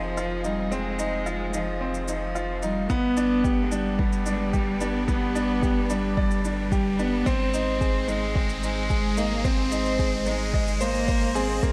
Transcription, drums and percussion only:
0.17 shaker soft
0.44 shaker medium
0.72 shaker soft
0.99 shaker medium
1.26 shaker soft
1.54 shaker medium
1.95 shaker soft
2.08 shaker medium
2.36 shaker soft
2.63 shaker medium
2.90 kick medium
2.90 shaker soft
3.17 shaker medium
3.44 kick medium
3.44 shaker soft
3.72 shaker medium
3.99 kick loud
4.12 shaker soft
4.26 shaker medium
4.53 kick medium
4.53 shaker soft
4.81 shaker medium
5.08 kick medium
5.08 shaker soft
5.36 shaker medium
5.63 kick loud
5.63 shaker soft
5.90 shaker medium
6.17 kick medium
6.31 shaker soft
6.45 shaker medium
6.72 kick loud
6.72 shaker soft
6.99 shaker medium
7.26 kick medium
7.26 shaker soft
7.54 shaker medium
7.81 kick medium
7.81 shaker soft
8.08 shaker medium
8.36 kick loud
8.49 shaker soft
8.63 shaker medium
8.90 kick medium
8.90 shaker soft
9.17 shaker medium
9.44 kick loud
9.44 shaker soft
9.72 shaker medium
9.86 shaker soft
9.99 kick loud
9.99 shaker soft
10.26 shaker medium
10.54 kick loud
10.67 shaker soft
10.81 shaker medium
10.94 shaker soft
11.08 kick loud
11.08 shaker soft
11.35 shaker medium
11.63 kick loud
11.63 shaker soft

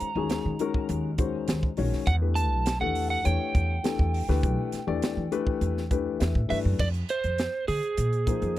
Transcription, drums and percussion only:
0.00 closed hi-hat medium
0.30 snare loud
0.30 closed hi-hat medium
0.59 closed hi-hat medium
0.74 kick medium
0.89 closed hi-hat medium
1.18 kick medium
1.18 closed hi-hat medium
1.48 snare loud
1.48 closed hi-hat medium
1.63 kick medium
1.77 open hi-hat medium
1.93 snare soft
2.07 kick loud
2.07 closed hi-hat medium
2.36 closed hi-hat medium
2.66 snare loud
2.66 closed hi-hat medium
2.95 open hi-hat medium
3.25 closed hi-hat medium
3.55 kick medium
3.55 closed hi-hat medium
3.84 snare loud
3.84 closed hi-hat medium
3.99 kick medium
4.14 open hi-hat medium
4.30 snare soft
4.43 kick loud
4.43 closed hi-hat medium
4.72 snare soft
4.72 closed hi-hat medium
5.02 snare loud
5.02 closed hi-hat medium
5.32 closed hi-hat medium
5.47 kick medium
5.61 closed hi-hat medium
5.77 snare soft
5.91 kick medium
5.91 closed hi-hat medium
6.20 snare loud
6.20 closed hi-hat medium
6.35 kick medium
6.50 open hi-hat medium
6.79 kick loud
6.79 crash medium
6.94 closed hi-hat soft
7.09 closed hi-hat medium
7.24 closed hi-hat soft
7.38 snare loud
7.38 closed hi-hat medium
7.68 open hi-hat medium
7.83 closed hi-hat soft
7.97 closed hi-hat medium
8.13 closed hi-hat soft
8.27 kick medium
8.27 closed hi-hat medium
8.42 closed hi-hat soft

